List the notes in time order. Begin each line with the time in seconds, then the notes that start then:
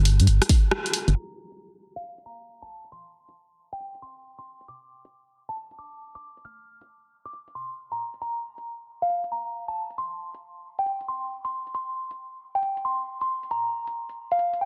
Already playing: G1
0.05 open hi-hat
0.20 G2, closed hi-hat
0.27 G1, closed hi-hat
0.42 cross-stick, closed hi-hat
0.49 kick, open hi-hat
0.71 cross-stick
0.86 closed hi-hat
0.94 open hi-hat
1.08 G1, closed hi-hat
1.16 A#5, closed hi-hat
1.52 closed hi-hat
1.96 F5, closed hi-hat
2.04 closed hi-hat
2.18 closed hi-hat
2.26 A#5
2.62 A5, closed hi-hat
2.84 closed hi-hat
2.92 C6, closed hi-hat
3.29 closed hi-hat
3.73 G5, closed hi-hat
3.80 closed hi-hat
3.95 closed hi-hat
4.02 C6
4.38 C6, closed hi-hat
4.61 closed hi-hat
4.68 D6, closed hi-hat
5.05 closed hi-hat
5.49 A5, closed hi-hat
5.57 closed hi-hat
5.71 closed hi-hat
5.79 D6
6.15 D6, closed hi-hat
6.37 closed hi-hat
6.45 F6, closed hi-hat
6.81 closed hi-hat
7.25 D6, closed hi-hat
7.33 closed hi-hat
7.48 closed hi-hat
7.55 C6
7.92 A#5, closed hi-hat
8.14 closed hi-hat
8.22 A#5, closed hi-hat
8.58 closed hi-hat
9.02 F5, closed hi-hat
9.10 closed hi-hat
9.24 closed hi-hat
9.32 A#5
9.68 A5, closed hi-hat
9.90 closed hi-hat
9.98 C6, closed hi-hat
10.34 closed hi-hat
10.79 G5, closed hi-hat
10.86 closed hi-hat
11.01 closed hi-hat
11.08 C6
11.45 C6, closed hi-hat
11.67 closed hi-hat
11.74 C6, closed hi-hat
12.11 closed hi-hat
12.55 G5, closed hi-hat
12.63 closed hi-hat
12.77 closed hi-hat
12.85 C6
13.21 C6, closed hi-hat
13.43 closed hi-hat
13.51 A#5, closed hi-hat
13.87 closed hi-hat
14.09 closed hi-hat
14.31 F5, closed hi-hat
14.39 closed hi-hat
14.54 closed hi-hat
14.61 G5